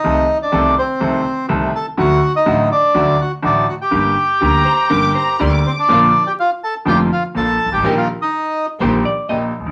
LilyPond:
<<
  \new Staff \with { instrumentName = "Violin section" } { \time 4/4 \key g \minor \tempo 4 = 124 r1 | r1 | r4 bes''4 d'''8 bes''8 c'''16 d'''8. | \key bes \major r1 |
r1 | }
  \new Staff \with { instrumentName = "Hollow-body jazz guitar" } { \time 4/4 \key g \minor r1 | r1 | r4 g'8 c''8 bes'8 c''8 d''4 | \key bes \major r1 |
r2 c''8 d''8 ees''8. r16 | }
  \new Staff \with { instrumentName = "Bandoneon" } { \time 4/4 \key g \minor <ees' ees''>8. <d' d''>8. <c' c''>4. r8 <a' a''>8 | <fis' fis''>8. <ees' ees''>8. <d' d''>4 <fis' fis''>8 <d' d''>8 <fis' fis''>16 <g' g''>16~ | <g' g''>2. r8 <c' c''>16 <d' d''>16~ | \key bes \major <d' d''>8. <g' g''>16 <f' f''>8 <a' a''>8 <g' g''>8 <f' f''>8 <a' a''>8. <g' g''>16~ |
<g' g''>16 <f' f''>8 <ees' ees''>4 r2 r16 | }
  \new Staff \with { instrumentName = "String section" } { \time 4/4 \key g \minor r1 | r1 | r1 | \key bes \major <bes d' f'>8 r4. <bes d' f'>8 r8 <bes d' f'>8 r8 |
<bes ees' g'>8 r4. <bes ees' g'>8 r8 <bes ees' g'>8 r8 | }
  \new Staff \with { instrumentName = "Grand piano" } { \clef bass \time 4/4 \key g \minor <c, c ees a c' a'>8 r8 <c, c ees a c' a'>8 r8 <c, c ees a c' a'>8 r8 <c, c ees a c' a'>8 r8 | <d, d fis a fis'>8 r8 <a,, a, d fis a fis'>8 r8 <d, d fis a fis'>8 r8 <a,, a, d fis a fis'>8 r8 | <g,, g, d g bes g'>8 r8 <d, d g bes g'>8 r8 <g,, g, d g bes g'>8 r8 <d, d g bes g'>8 r8 | \key bes \major <bes,, bes, d f bes f'>8 r4. <f,, f, d f bes f'>8 r8 <bes,, bes,>8 r32 g,,32 aes,,32 a,,32 |
<bes,, bes, ees g bes g'>8 r4. <bes,, bes, ees g bes g'>8 r8 <bes,, bes,>8 r32 a,,32 bes,,32 r32 | }
  \new Staff \with { instrumentName = "Upright bass" } { \clef bass \time 4/4 \key g \minor c,16. r8 r32 c,16. r8 r32 c,16. r8 r32 c,16. r8 r32 | d,16. r8 r32 a,,16. r8 r32 d,16. r8 r32 a,,16. r8 r32 | g,,16. r8 r32 d,16. r8 r32 g,,16. r8 r32 d,16. r8 r32 | \key bes \major bes,,16. r4. r32 f,,16. r8 r32 bes,,16. r16 g,,32 aes,,32 a,,32 |
bes,,16. r4. r32 bes,,16. r8 r32 bes,,16. r16 a,,32 bes,,32 r32 | }
>>